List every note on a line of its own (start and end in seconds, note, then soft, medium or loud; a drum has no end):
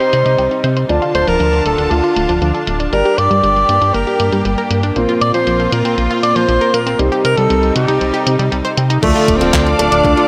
0.00 0.86 C3 medium
0.00 0.87 G3 medium
0.00 0.85 C4 medium
0.00 0.86 C4 medium
0.00 0.86 D#4 medium
0.00 0.87 D#4 medium
0.00 0.86 G4 medium
0.00 0.12 G4 medium
0.00 0.60 C5 loud
0.00 0.86 C5 medium
0.00 closed hi-hat soft
0.13 0.24 C3 medium
0.13 0.25 D#5 medium
0.13 closed hi-hat medium
0.26 0.36 C3 medium
0.26 0.34 D#5 medium
0.26 closed hi-hat medium
0.38 0.49 C2 medium
0.38 0.44 G5 medium
0.38 closed hi-hat medium
0.51 0.56 D#4 medium
0.51 closed hi-hat soft
0.64 0.85 C3 loud
0.64 0.69 C5 loud
0.64 closed hi-hat medium
0.77 0.85 C5 medium
0.77 closed hi-hat soft
0.89 1.00 D2 loud
0.89 2.91 D3 medium
0.89 2.90 D3 medium
0.89 0.98 F3 medium
0.89 4.92 D4 medium
0.89 2.90 D4 medium
0.89 2.91 F4 medium
0.89 2.90 F4 medium
0.89 2.90 D5 medium
0.89 2.91 A5 medium
0.89 2.90 A5 medium
0.89 closed hi-hat soft
1.02 1.14 F4 loud
1.02 closed hi-hat soft
1.15 1.25 D1 medium
1.15 1.27 A3 medium
1.15 1.29 C5 loud
1.15 closed hi-hat medium
1.27 1.38 D1 loud
1.27 1.33 F3 loud
1.27 1.65 A#4 loud
1.27 closed hi-hat soft
1.40 1.61 D2 medium
1.40 1.49 F3 loud
1.40 closed hi-hat soft
1.53 1.61 F3 medium
1.53 closed hi-hat soft
1.65 1.76 D1 medium
1.65 1.74 A3 medium
1.65 1.93 A4 medium
1.65 closed hi-hat medium
1.78 1.89 D1 loud
1.78 1.87 D4 loud
1.78 closed hi-hat soft
1.91 2.01 D2 medium
1.91 2.00 A3 medium
1.91 2.67 F4 medium
1.91 closed hi-hat soft
2.04 2.16 F4 medium
2.04 closed hi-hat soft
2.16 2.27 D1 medium
2.16 2.28 A3 medium
2.16 closed hi-hat medium
2.29 2.40 D1 medium
2.29 2.34 F3 loud
2.29 closed hi-hat soft
2.42 2.52 D2 loud
2.42 2.50 F3 medium
2.42 closed hi-hat soft
2.54 2.67 A4 loud
2.54 closed hi-hat soft
2.67 2.88 D1 medium
2.67 2.76 A3 medium
2.67 closed hi-hat medium
2.80 2.89 D4 loud
2.80 closed hi-hat medium
2.93 3.03 G1 loud
2.93 3.01 G3 medium
2.93 4.93 G3 medium
2.93 6.96 A#3 medium
2.93 4.93 D4 medium
2.93 4.93 G4 medium
2.93 4.94 G4 medium
2.93 3.19 A#4 loud
2.93 4.93 A#4 medium
2.93 4.93 D5 medium
2.93 closed hi-hat soft
3.05 3.17 G4 loud
3.05 closed hi-hat soft
3.18 3.29 G2 medium
3.18 3.30 A#3 medium
3.18 3.96 D5 loud
3.18 closed hi-hat medium
3.31 3.41 G2 loud
3.31 3.36 G3 loud
3.31 closed hi-hat soft
3.43 3.64 G1 loud
3.43 3.52 G3 loud
3.43 closed hi-hat soft
3.56 3.65 G3 medium
3.56 closed hi-hat soft
3.69 3.79 G2 medium
3.69 3.77 A#3 medium
3.69 closed hi-hat medium
3.82 3.92 G2 loud
3.82 3.90 D4 loud
3.82 closed hi-hat soft
3.94 4.05 G1 medium
3.94 4.03 A#3 medium
3.94 4.45 A#4 medium
3.94 closed hi-hat soft
4.07 4.19 G4 loud
4.07 closed hi-hat soft
4.20 4.30 G2 medium
4.20 4.32 A#3 medium
4.20 closed hi-hat medium
4.32 4.43 G2 medium
4.32 4.38 G3 loud
4.32 closed hi-hat soft
4.45 4.56 G1 loud
4.45 4.54 G3 loud
4.45 closed hi-hat medium
4.58 4.70 A#4 loud
4.58 closed hi-hat soft
4.71 4.92 G2 medium
4.71 4.79 A#3 medium
4.71 closed hi-hat medium
4.83 4.92 D4 loud
4.83 closed hi-hat soft
4.96 5.07 A#1 loud
4.96 6.96 A#2 medium
4.96 5.05 F3 medium
4.96 6.97 C4 medium
4.96 6.96 C4 medium
4.96 6.97 F4 medium
4.96 6.96 F4 medium
4.96 6.96 A#4 medium
4.96 6.96 C5 medium
4.96 closed hi-hat medium
5.09 5.21 F4 loud
5.09 closed hi-hat soft
5.21 5.32 A#2 medium
5.21 5.34 A#3 medium
5.21 5.33 D5 loud
5.21 closed hi-hat medium
5.34 5.45 A#2 loud
5.34 5.39 F3 loud
5.34 5.74 C5 loud
5.34 closed hi-hat medium
5.47 5.68 A#1 medium
5.47 5.55 F3 loud
5.47 closed hi-hat soft
5.60 5.68 F3 medium
5.60 closed hi-hat soft
5.72 5.83 A#2 loud
5.72 5.81 A#3 medium
5.72 5.98 A#4 medium
5.72 closed hi-hat medium
5.85 5.95 A#2 medium
5.85 5.94 C4 loud
5.85 closed hi-hat medium
5.98 6.08 A#1 medium
5.98 6.06 A#3 medium
5.98 closed hi-hat soft
6.11 6.23 F4 loud
6.11 closed hi-hat soft
6.23 6.34 A#2 medium
6.23 6.35 A#3 medium
6.23 6.37 D5 loud
6.23 closed hi-hat medium
6.36 6.46 A#2 medium
6.36 6.41 F3 loud
6.36 6.75 C5 loud
6.36 closed hi-hat soft
6.48 6.59 A#1 loud
6.48 6.57 F3 medium
6.48 closed hi-hat soft
6.61 6.73 A#4 loud
6.61 closed hi-hat soft
6.74 6.95 A#2 medium
6.74 6.83 A#3 medium
6.74 6.99 A#4 medium
6.74 closed hi-hat medium
6.87 6.95 C4 loud
6.87 closed hi-hat soft
6.99 7.10 C2 loud
6.99 9.00 C3 medium
6.99 7.08 G3 medium
6.99 9.01 G3 medium
6.99 9.00 C4 medium
6.99 9.01 C4 medium
6.99 9.00 D#4 medium
6.99 9.01 D#4 medium
6.99 9.00 G4 medium
6.99 9.00 C5 medium
6.99 closed hi-hat medium
7.12 7.24 G4 loud
7.12 closed hi-hat soft
7.25 7.35 C3 medium
7.25 7.37 C4 medium
7.25 7.39 A#4 loud
7.25 closed hi-hat medium
7.37 7.48 C3 medium
7.37 7.43 G3 loud
7.37 7.75 A4 loud
7.37 closed hi-hat medium
7.50 7.71 C2 medium
7.50 7.59 G3 loud
7.50 closed hi-hat medium
7.63 7.72 G3 medium
7.63 closed hi-hat soft
7.76 7.86 C3 loud
7.76 7.84 C4 medium
7.76 8.48 G4 medium
7.76 closed hi-hat medium
7.88 7.99 C3 loud
7.88 7.97 D#4 loud
7.88 closed hi-hat medium
8.01 8.12 C2 medium
8.01 8.10 C4 medium
8.01 closed hi-hat medium
8.14 8.26 G4 loud
8.14 closed hi-hat soft
8.26 8.37 C3 medium
8.26 8.39 C4 medium
8.26 closed hi-hat loud
8.39 8.50 C3 medium
8.39 8.44 G3 loud
8.39 closed hi-hat medium
8.52 8.63 C2 medium
8.52 8.61 G3 loud
8.52 closed hi-hat medium
8.65 8.77 C5 loud
8.65 closed hi-hat soft
8.77 8.98 C3 loud
8.77 8.86 C4 medium
8.77 closed hi-hat medium
8.90 8.99 D#4 loud
8.90 closed hi-hat medium
9.03 9.13 D2 loud
9.03 9.38 D3 medium
9.03 9.11 F3 medium
9.03 9.38 A3 medium
9.03 9.38 A3 loud
9.03 9.38 D4 medium
9.03 9.38 F4 medium
9.03 9.38 A4 loud
9.03 10.28 A4 medium
9.03 10.28 D5 medium
9.03 10.28 F5 medium
9.03 10.28 D6 medium
9.03 kick loud
9.03 closed hi-hat medium
9.03 crash loud
9.16 9.28 F4 loud
9.16 closed hi-hat soft
9.28 9.39 D1 medium
9.28 9.40 A3 medium
9.28 kick medium
9.28 closed hi-hat medium
9.37 9.71 C4 loud
9.41 9.51 D1 loud
9.41 9.71 D3 medium
9.41 9.46 F3 loud
9.41 9.71 A3 medium
9.41 9.71 D4 medium
9.41 9.71 F4 medium
9.41 9.71 A4 medium
9.41 closed hi-hat medium
9.54 9.75 D2 loud
9.54 9.62 F3 loud
9.54 kick loud
9.54 clap loud
9.54 closed hi-hat medium
9.66 9.75 F3 medium
9.66 closed hi-hat soft
9.79 9.90 D1 loud
9.79 10.01 D3 medium
9.79 9.88 A3 medium
9.79 10.01 A3 medium
9.79 10.01 D4 medium
9.79 10.28 D4 loud
9.79 10.01 F4 medium
9.79 10.01 A4 loud
9.79 closed hi-hat medium
9.92 10.02 D1 loud
9.92 10.00 D4 loud
9.92 closed hi-hat medium
10.04 10.15 D2 medium
10.04 10.27 D3 medium
10.04 10.27 A3 medium
10.04 10.13 A3 medium
10.04 10.27 D4 medium
10.04 10.27 F4 medium
10.04 10.27 A4 loud
10.04 kick loud
10.04 closed hi-hat medium
10.17 10.28 F4 loud
10.17 closed hi-hat soft